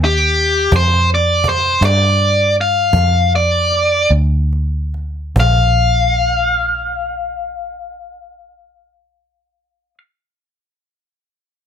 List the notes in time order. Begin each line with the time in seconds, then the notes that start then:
Already playing: D#2
0.02 G4, cajon slap
0.37 cajon slap
0.72 F2, cajon bass
0.76 C5
1.08 cajon slap
1.15 D5
1.44 cajon bass, cajon slap
1.49 C5
1.81 G2 D5, cajon slap
2.18 cajon slap
2.56 cajon slap
2.61 F5
2.93 F2, cajon bass
3.32 D5, cajon slap
3.71 cajon slap
4.11 D2, cajon slap
4.53 cajon slap
4.94 cajon slap
5.36 A#1, cajon bass
5.40 F5